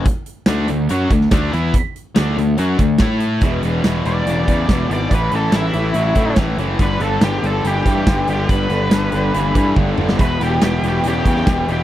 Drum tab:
HH |x-x-x-x-x-x-x-x-|x-x-x-x-x-x-x-x-|x-x-x-x-x-x-x-x-|x-x-x-x-x-x-x-x-|
SD |----o------oo---|----o-------o---|----o-------o---|----o-------o---|
T1 |----------------|----------------|----------------|----------------|
T2 |----------------|----------------|----------------|----------------|
BD |o---------o-o---|o---------o-o---|o---------o-o---|o---------o-o---|

HH |x-x-x-x-x-x-x-x-|x-x-x-x-x-x-----|x-x-x-x-x-x-x-x-|
SD |----o-------o---|----o----------o|----o------oo---|
T1 |----------------|------------o---|----------------|
T2 |----------------|--------------o-|----------------|
BD |o---------o-o---|o---------o-o---|o---------o-o---|